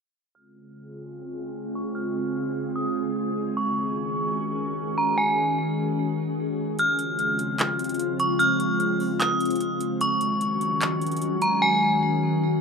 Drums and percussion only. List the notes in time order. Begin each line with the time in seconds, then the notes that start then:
6.79 closed hi-hat
6.99 closed hi-hat
7.19 closed hi-hat
7.39 closed hi-hat
7.59 clap, closed hi-hat
7.79 closed hi-hat
7.84 closed hi-hat
7.89 closed hi-hat
7.94 closed hi-hat
7.99 closed hi-hat
8.20 closed hi-hat
8.40 closed hi-hat
8.60 closed hi-hat
8.80 closed hi-hat
9.00 open hi-hat
9.20 clap, closed hi-hat
9.40 closed hi-hat
9.45 closed hi-hat
9.50 closed hi-hat
9.56 closed hi-hat
9.61 closed hi-hat
9.81 closed hi-hat
10.01 closed hi-hat
10.21 closed hi-hat
10.41 closed hi-hat
10.61 closed hi-hat
10.81 clap, closed hi-hat
11.02 closed hi-hat
11.07 closed hi-hat
11.12 closed hi-hat
11.17 closed hi-hat
11.22 closed hi-hat
11.42 closed hi-hat